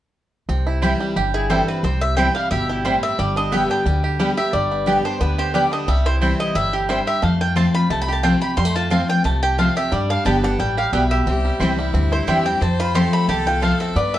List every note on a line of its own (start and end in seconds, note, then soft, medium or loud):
0.49 0.93 C2 medium
0.49 1.13 C3 medium
0.49 1.68 C4 medium
0.67 1.34 E4 medium
0.82 1.15 E3 medium
0.82 1.15 G3 medium
0.82 0.92 C4 medium
0.82 1.15 C4 medium
0.82 0.92 E4 loud
0.82 1.16 E4 medium
0.82 1.16 G4 medium
0.82 0.92 C5 medium
0.82 0.92 G5 medium
1.00 1.50 G3 medium
1.16 1.60 G1 medium
1.16 1.81 G2 medium
1.16 2.17 G4 medium
1.34 1.81 E4 medium
1.34 1.50 G#4 medium
1.50 1.82 E3 medium
1.50 2.35 G3 medium
1.50 1.82 G3 medium
1.50 1.59 C4 medium
1.50 1.83 C4 medium
1.50 1.60 E4 medium
1.50 1.83 E4 medium
1.50 1.67 A4 medium
1.50 1.60 C5 loud
1.50 1.60 G5 loud
1.68 1.83 C4 medium
1.68 1.84 B4 medium
1.83 2.27 C2 loud
1.83 2.48 C3 medium
1.83 2.32 C4 medium
1.83 2.02 C5 medium
2.01 2.16 E5 medium
2.17 2.35 E3 medium
2.17 2.35 G3 loud
2.17 2.27 C4 medium
2.17 2.35 C4 medium
2.17 2.27 E4 loud
2.17 2.34 E4 loud
2.17 2.51 G4 medium
2.17 2.27 C5 medium
2.17 2.34 G5 medium
2.17 2.28 G5 loud
2.35 2.85 G3 medium
2.35 2.51 C4 soft
2.35 2.50 E4 medium
2.35 2.50 F5 medium
2.51 2.95 G1 medium
2.51 2.84 B2 medium
2.51 3.91 G4 medium
2.51 2.68 E5 medium
2.69 3.16 E4 medium
2.69 2.85 G4 medium
2.85 3.17 A2 medium
2.85 3.18 G3 medium
2.85 2.94 C4 medium
2.85 2.95 E4 medium
2.85 3.02 C5 medium
2.85 2.95 C5 medium
2.85 2.95 G5 loud
3.03 3.19 C4 medium
3.03 3.18 E5 medium
3.19 3.62 G1 medium
3.19 3.83 G2 medium
3.19 3.85 G3 medium
3.19 3.36 D5 medium
3.36 3.70 D4 medium
3.36 3.52 D#5 medium
3.52 3.84 D3 medium
3.52 3.85 G3 medium
3.52 3.62 B3 medium
3.52 4.00 B3 medium
3.52 3.85 B3 medium
3.52 3.62 G4 medium
3.52 3.85 G4 loud
3.52 3.62 D5 medium
3.52 3.70 E5 medium
3.52 3.62 G5 loud
3.70 4.16 D4 medium
3.70 4.02 G5 medium
3.86 4.29 D2 medium
3.86 4.18 D3 medium
3.86 4.19 G3 medium
4.04 4.37 G4 medium
4.19 4.37 D3 medium
4.19 4.53 G3 medium
4.19 4.37 G3 medium
4.19 4.29 B3 medium
4.19 4.37 B3 medium
4.19 4.29 G4 medium
4.19 4.36 G4 medium
4.19 4.29 D5 medium
4.19 4.30 G5 medium
4.37 4.54 B3 soft
4.37 4.52 G4 medium
4.37 4.87 G4 medium
4.37 4.53 E5 medium
4.53 4.97 G1 medium
4.53 5.18 G2 medium
4.53 5.54 G3 medium
4.53 5.01 D5 medium
4.71 5.18 B3 medium
4.86 5.04 D3 medium
4.86 5.04 G3 loud
4.86 4.96 B3 medium
4.86 5.04 B3 medium
4.86 4.97 G4 medium
4.86 5.35 G4 medium
4.86 5.04 G4 medium
4.86 4.97 D5 medium
4.86 4.97 G5 loud
5.05 5.21 B3 soft
5.05 5.51 D4 medium
5.05 5.20 G4 medium
5.05 5.20 C5 medium
5.21 5.64 D2 medium
5.21 5.53 D3 medium
5.21 5.69 B3 medium
5.21 5.38 B4 medium
5.38 5.85 G4 medium
5.38 5.54 C5 medium
5.54 5.86 D3 medium
5.54 5.87 G3 medium
5.54 5.64 B3 medium
5.54 5.87 B3 medium
5.54 5.64 G4 medium
5.54 5.87 G4 loud
5.54 5.64 D5 medium
5.54 5.72 D5 medium
5.54 5.64 G5 medium
5.72 5.88 D4 medium
5.72 5.88 D#5 medium
5.88 6.31 C2 medium
5.88 6.52 C3 medium
5.88 6.36 G3 medium
5.88 6.06 E5 medium
6.06 6.38 E4 medium
6.06 6.15 C5 medium
6.21 6.54 E3 medium
6.21 6.54 G3 medium
6.21 6.31 C4 medium
6.21 7.56 C4 medium
6.21 6.54 C4 loud
6.21 6.31 E4 medium
6.21 6.54 E4 loud
6.21 6.31 C5 loud
6.21 6.32 G5 medium
6.40 6.86 E4 medium
6.40 6.55 D#5 medium
6.55 6.99 G1 medium
6.55 6.88 A2 medium
6.55 6.88 G3 medium
6.55 6.73 E5 loud
6.73 7.06 G4 medium
6.73 6.89 G4 medium
6.89 7.21 G2 medium
6.89 7.22 G3 medium
6.89 6.99 C4 medium
6.89 6.99 E4 medium
6.89 6.99 C5 loud
6.89 7.07 C5 medium
6.89 6.99 G5 loud
7.07 7.23 G4 medium
7.07 7.22 E5 medium
7.22 7.87 F2 medium
7.22 7.66 F2 loud
7.22 7.90 A3 medium
7.22 7.40 F5 medium
7.41 7.74 F4 medium
7.41 7.56 G5 medium
7.56 7.73 F3 medium
7.56 7.73 A3 medium
7.56 7.66 C4 medium
7.56 8.04 C4 medium
7.56 7.74 C4 medium
7.56 7.66 F4 medium
7.56 7.73 F4 medium
7.56 7.66 C5 loud
7.56 7.74 A5 medium
7.56 7.66 A5 loud
7.74 7.90 C4 soft
7.74 7.89 F4 medium
7.74 8.21 F4 medium
7.74 7.90 B5 loud
7.90 8.34 C2 medium
7.90 8.54 C3 medium
7.90 8.23 A3 medium
7.90 8.01 A5 medium
8.02 8.12 B5 loud
8.08 8.41 G4 medium
8.12 8.23 A5 medium
8.23 8.41 F3 medium
8.23 8.57 A3 medium
8.23 8.41 A3 medium
8.23 8.33 C4 medium
8.23 8.41 C4 medium
8.23 8.33 F4 loud
8.23 8.40 F4 medium
8.23 8.34 C5 medium
8.23 8.41 G5 medium
8.23 8.34 A5 medium
8.41 8.57 C4 soft
8.41 8.56 F4 medium
8.41 8.88 G4 medium
8.41 8.57 B5 medium
8.57 9.21 F2 medium
8.57 9.01 F2 medium
8.57 8.65 G3 medium
8.57 8.75 C6 loud
8.65 8.91 A3 medium
8.76 9.08 F4 medium
8.76 8.91 A5 medium
8.90 9.08 F3 medium
8.90 9.08 A3 loud
8.90 9.00 C4 medium
8.90 9.39 C4 medium
8.90 9.09 C4 loud
8.90 9.01 F4 loud
8.90 9.07 F4 loud
8.90 9.01 C5 medium
8.90 9.09 F5 medium
8.90 9.01 A5 loud
9.08 9.25 C4 soft
9.08 9.24 F4 medium
9.08 9.55 F4 medium
9.08 9.25 G5 medium
9.24 9.68 C2 medium
9.24 9.89 C3 loud
9.24 9.58 A3 medium
9.24 9.42 A5 medium
9.43 9.75 G4 medium
9.43 9.58 G5 medium
9.58 9.75 F3 medium
9.58 9.91 A3 medium
9.58 9.76 A3 medium
9.58 9.68 C4 medium
9.58 9.76 C4 loud
9.58 9.68 F4 medium
9.58 9.75 F4 medium
9.58 9.68 C5 medium
9.58 9.76 F5 medium
9.58 9.68 A5 loud
9.76 9.92 C4 soft
9.76 9.91 F4 medium
9.76 9.92 G4 medium
9.76 9.92 E5 medium
9.92 10.14 G2 medium
9.92 10.56 G2 medium
9.92 10.59 G3 medium
9.92 10.10 D5 medium
10.10 10.43 D4 medium
10.10 10.25 F5 medium
10.25 10.54 G1 medium
10.25 10.42 D3 medium
10.25 10.43 G3 medium
10.25 10.35 B3 medium
10.25 10.74 B3 medium
10.25 10.43 B3 loud
10.25 10.35 G4 medium
10.25 10.42 G4 loud
10.25 10.35 D5 medium
10.25 10.36 G5 loud
10.25 10.43 A5 medium
10.43 10.59 B3 soft
10.43 10.90 D4 medium
10.43 10.58 G4 medium
10.43 10.59 F#5 medium
10.59 10.88 A1 medium
10.59 10.92 A2 medium
10.59 10.92 G3 medium
10.59 10.77 G5 medium
10.77 11.10 G4 medium
10.77 10.93 F5 medium
10.93 11.21 B1 medium
10.93 11.25 B2 medium
10.93 11.27 G3 medium
10.93 11.02 B3 medium
10.93 11.03 G4 medium
10.93 11.03 D5 loud
10.93 11.10 E5 medium
10.93 11.03 G5 loud
11.11 11.27 G4 medium
11.11 11.57 E5 medium
11.26 11.48 C2 loud
11.26 11.91 C3 medium
11.26 11.60 C4 medium
11.26 11.63 G4 loud
11.45 11.78 G3 medium
11.60 11.89 C2 medium
11.60 11.78 E3 medium
11.60 11.78 G3 loud
11.60 11.70 C4 medium
11.60 11.93 C4 medium
11.60 11.78 C4 loud
11.60 11.70 E4 medium
11.60 12.29 E4 medium
11.60 11.77 E4 loud
11.60 11.70 C5 loud
11.60 11.70 G5 loud
11.78 12.25 G3 medium
11.78 11.94 C4 soft
11.78 11.93 E4 medium
11.94 12.22 D2 medium
11.94 12.58 G2 medium
11.94 12.42 C4 medium
12.12 12.58 E4 medium
12.12 12.27 C5 medium
12.27 12.56 E2 medium
12.27 12.45 E3 medium
12.27 12.45 G3 medium
12.27 12.61 G3 medium
12.27 12.37 C4 medium
12.27 12.45 C4 medium
12.27 12.37 E4 loud
12.27 12.44 E4 medium
12.27 12.62 G4 loud
12.27 12.37 C5 medium
12.27 12.45 E5 medium
12.27 12.38 G5 loud
12.45 12.60 C4 medium
12.45 12.62 C4 medium
12.45 12.61 E4 medium
12.45 12.61 G5 medium
12.61 13.05 F2 loud
12.61 13.26 F2 medium
12.61 13.09 C4 medium
12.61 12.97 C5 loud
12.61 12.79 A5 medium
12.80 13.26 F4 medium
12.80 12.95 B5 medium
12.95 13.27 F3 loud
12.95 13.27 A3 medium
12.95 13.04 C4 medium
12.95 13.28 C4 medium
12.95 13.05 F4 loud
12.95 13.28 F4 loud
12.95 13.28 G4 medium
12.95 13.97 A4 loud
12.95 13.05 C5 medium
12.95 13.05 A5 loud
12.95 13.12 C6 loud
13.13 13.59 A3 medium
13.13 13.28 B5 medium
13.28 13.72 C2 medium
13.28 13.61 E2 medium
13.28 13.77 G4 medium
13.28 13.46 A5 medium
13.47 13.93 F4 medium
13.47 13.62 G5 medium
13.62 13.94 F2 medium
13.62 13.96 A3 medium
13.62 13.72 C4 medium
13.62 13.72 F4 medium
13.62 13.72 C5 loud
13.62 13.80 F5 medium
13.62 13.72 A5 loud
13.80 13.96 C4 medium
13.80 13.95 E5 medium
13.96 14.18 G2 loud
13.96 14.19 G2 medium
13.96 14.19 B3 medium
13.96 14.19 B4 loud
13.96 14.13 D5 medium
14.14 14.19 G3 medium
14.14 14.19 E5 medium